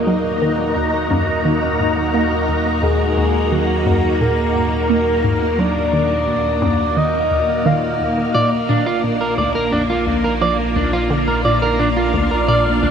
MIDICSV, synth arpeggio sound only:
0, 0, Header, 1, 2, 480
1, 0, Start_track
1, 0, Key_signature, -6, "minor"
1, 0, Tempo, 689655
1, 49, Time_signature, 4, 2, 24, 8
1, 8984, End_track
2, 0, Start_track
2, 0, Title_t, "Synth arpeggio sound"
2, 0, Program_c, 0, 84
2, 49, Note_on_c, 0, 54, 81
2, 165, Note_off_c, 0, 54, 0
2, 290, Note_on_c, 0, 51, 77
2, 405, Note_off_c, 0, 51, 0
2, 530, Note_on_c, 0, 39, 72
2, 645, Note_off_c, 0, 39, 0
2, 770, Note_on_c, 0, 42, 99
2, 885, Note_off_c, 0, 42, 0
2, 1010, Note_on_c, 0, 51, 77
2, 1125, Note_off_c, 0, 51, 0
2, 1250, Note_on_c, 0, 44, 72
2, 1365, Note_off_c, 0, 44, 0
2, 1489, Note_on_c, 0, 58, 78
2, 1559, Note_off_c, 0, 58, 0
2, 1729, Note_on_c, 0, 39, 76
2, 1799, Note_off_c, 0, 39, 0
2, 1969, Note_on_c, 0, 39, 80
2, 2085, Note_off_c, 0, 39, 0
2, 2208, Note_on_c, 0, 39, 76
2, 2324, Note_off_c, 0, 39, 0
2, 2449, Note_on_c, 0, 51, 72
2, 2565, Note_off_c, 0, 51, 0
2, 2689, Note_on_c, 0, 42, 93
2, 2805, Note_off_c, 0, 42, 0
2, 2929, Note_on_c, 0, 46, 79
2, 3045, Note_off_c, 0, 46, 0
2, 3169, Note_on_c, 0, 44, 76
2, 3285, Note_off_c, 0, 44, 0
2, 3409, Note_on_c, 0, 58, 78
2, 3478, Note_off_c, 0, 58, 0
2, 3648, Note_on_c, 0, 44, 78
2, 3718, Note_off_c, 0, 44, 0
2, 3889, Note_on_c, 0, 54, 78
2, 4005, Note_off_c, 0, 54, 0
2, 4128, Note_on_c, 0, 51, 76
2, 4244, Note_off_c, 0, 51, 0
2, 4369, Note_on_c, 0, 39, 72
2, 4484, Note_off_c, 0, 39, 0
2, 4609, Note_on_c, 0, 42, 96
2, 4724, Note_off_c, 0, 42, 0
2, 4850, Note_on_c, 0, 51, 79
2, 4965, Note_off_c, 0, 51, 0
2, 5089, Note_on_c, 0, 39, 77
2, 5158, Note_off_c, 0, 39, 0
2, 5329, Note_on_c, 0, 51, 103
2, 5445, Note_off_c, 0, 51, 0
2, 5570, Note_on_c, 0, 39, 79
2, 5743, Note_off_c, 0, 39, 0
2, 5810, Note_on_c, 0, 46, 81
2, 5925, Note_off_c, 0, 46, 0
2, 6049, Note_on_c, 0, 46, 77
2, 6165, Note_off_c, 0, 46, 0
2, 6290, Note_on_c, 0, 46, 70
2, 6405, Note_off_c, 0, 46, 0
2, 6529, Note_on_c, 0, 38, 96
2, 6645, Note_off_c, 0, 38, 0
2, 6769, Note_on_c, 0, 41, 79
2, 6884, Note_off_c, 0, 41, 0
2, 7009, Note_on_c, 0, 38, 73
2, 7124, Note_off_c, 0, 38, 0
2, 7248, Note_on_c, 0, 53, 78
2, 7318, Note_off_c, 0, 53, 0
2, 7488, Note_on_c, 0, 38, 76
2, 7558, Note_off_c, 0, 38, 0
2, 7728, Note_on_c, 0, 50, 86
2, 7844, Note_off_c, 0, 50, 0
2, 7968, Note_on_c, 0, 46, 73
2, 8084, Note_off_c, 0, 46, 0
2, 8209, Note_on_c, 0, 46, 73
2, 8324, Note_off_c, 0, 46, 0
2, 8449, Note_on_c, 0, 38, 97
2, 8564, Note_off_c, 0, 38, 0
2, 8689, Note_on_c, 0, 46, 80
2, 8805, Note_off_c, 0, 46, 0
2, 8928, Note_on_c, 0, 38, 76
2, 8984, Note_off_c, 0, 38, 0
2, 8984, End_track
0, 0, End_of_file